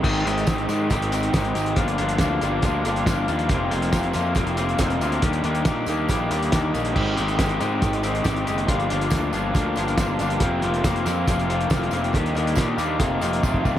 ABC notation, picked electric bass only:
X:1
M:4/4
L:1/8
Q:1/4=139
K:Ablyd
V:1 name="Picked electric bass" clef=bass
A,,, A,,, A,,, A,, A,,,2 A,,, A,,, | G,,, G,,, D,, G,,, D,, G,,, G,,, E,, | F,,, F,,, F,,, F,, F,,,2 F,,, D,, | E,, E,, B,, E,, B,,, E,, E,, B,,, |
A,,, A,,, A,,, A,, A,,,2 A,,, ^F,,, | G,,, G,,, D,, G,,, D,, G,,, G,,, G,,, | F,,, F,,, F,,, F,, F,,,2 F,,, F,,, | E,, E,, B,, E,, F,,, F,,, F,,, C,, |]